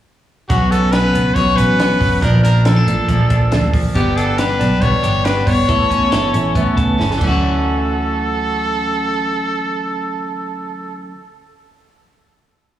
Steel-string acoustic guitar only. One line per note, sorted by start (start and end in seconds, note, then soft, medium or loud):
0.49 0.93 B2 medium
0.49 0.91 F#3 medium
0.49 0.92 B3 medium
0.49 0.93 C#4 medium
0.49 0.93 F#4 medium
0.93 1.14 F#3 medium
0.93 1.14 B3 medium
0.93 1.14 C#4 medium
0.93 1.12 F#4 medium
1.13 1.35 B3 soft
1.13 1.35 C#4 soft
1.13 1.36 F#4 soft
1.35 1.79 B2 medium
1.35 1.78 F#3 medium
1.35 1.79 B3 medium
1.35 1.79 C#4 medium
1.35 1.80 F#4 medium
1.79 2.22 F#3 soft
1.79 2.23 B3 medium
1.79 2.23 C#4 medium
1.79 2.23 F#4 medium
2.22 2.64 A#2 medium
2.22 2.65 F3 medium
2.22 2.66 A#3 medium
2.22 2.67 D4 medium
2.65 2.87 A#2 medium
2.65 2.88 F3 medium
2.65 2.87 A#3 medium
2.65 2.85 D4 medium
2.87 3.08 F3 soft
2.87 3.08 A#3 medium
2.87 3.08 D4 medium
3.09 3.50 A#2 medium
3.09 3.50 F3 medium
3.09 3.51 A#3 medium
3.09 3.53 D4 medium
3.51 3.95 A#2 medium
3.51 3.95 F3 medium
3.51 3.95 A#3 medium
3.51 3.95 D4 medium
3.95 4.38 G2 medium
3.95 4.36 D3 medium
3.95 4.37 G3 medium
3.95 4.39 B3 medium
3.95 4.39 D4 medium
4.37 4.60 D3 medium
4.37 4.60 G3 medium
4.37 4.59 B3 medium
4.37 4.58 D4 medium
4.59 4.81 G3 soft
4.59 4.81 B3 soft
4.59 4.81 D4 soft
4.81 5.25 G2 medium
4.81 5.23 D3 medium
4.81 5.24 G3 medium
4.81 5.25 B3 medium
4.81 5.25 D4 medium
5.24 5.47 D3 soft
5.24 5.47 G3 medium
5.24 5.46 B3 medium
5.24 5.45 D4 medium
5.46 5.68 G3 soft
5.46 5.67 B3 soft
5.46 5.68 D4 soft
5.68 6.15 A3 medium
5.68 6.11 B3 medium
5.68 6.12 E4 medium
5.68 6.13 A4 medium
5.68 6.14 C#5 medium
6.12 6.34 B3 medium
6.12 6.34 E4 medium
6.12 6.33 A4 medium
6.12 6.32 C#5 medium
6.33 6.55 E4 soft
6.33 6.55 A4 medium
6.33 6.55 C#5 medium
6.55 7.01 A3 medium
6.55 6.97 B3 medium
6.55 6.98 E4 medium
6.55 6.99 A4 medium
6.55 7.00 C#5 medium
6.98 7.20 B3 medium
6.98 7.21 E4 medium
6.98 7.26 A4 medium
6.98 7.21 C#5 medium
7.18 11.08 D3 medium
7.18 11.10 F#3 medium
7.23 11.12 C#4 medium
7.23 11.14 E4 medium
7.23 11.16 A4 medium